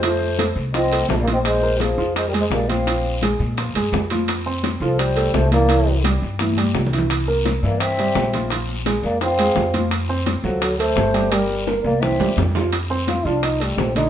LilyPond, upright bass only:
\new Staff \with { instrumentName = "Upright bass" } { \clef bass \time 4/4 \key bes \major \tempo 4 = 170 f,4. c,4. bes,,4~ | bes,,4. f,4. bes,,4~ | bes,,4. bes,4 g,8 f,4~ | f,4. c,4. c,4~ |
c,4. g,4. c,4~ | c,4. g,4. bes,,4~ | bes,,4. f,4. f,4~ | f,4. d,4. g,,4~ |
g,,4. c,4 e,8 f,4~ | f,4. c,4. bes,,4 | }